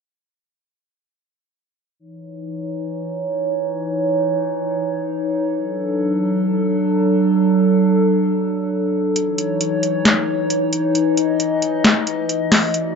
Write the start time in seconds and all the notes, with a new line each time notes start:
1.99 E3 D#4 C#5
5.58 F#3 D4 A4
9.16 E3 D#4 C#5, closed hi-hat
9.38 closed hi-hat
9.61 closed hi-hat
9.83 closed hi-hat
10.05 snare, clap, closed hi-hat
10.50 closed hi-hat
10.73 closed hi-hat
10.95 D#5, closed hi-hat
11.17 closed hi-hat
11.40 closed hi-hat
11.62 closed hi-hat
11.85 snare, clap, closed hi-hat
12.07 closed hi-hat
12.29 closed hi-hat
12.52 snare, clap, open hi-hat
12.74 A3 F#4 D5, closed hi-hat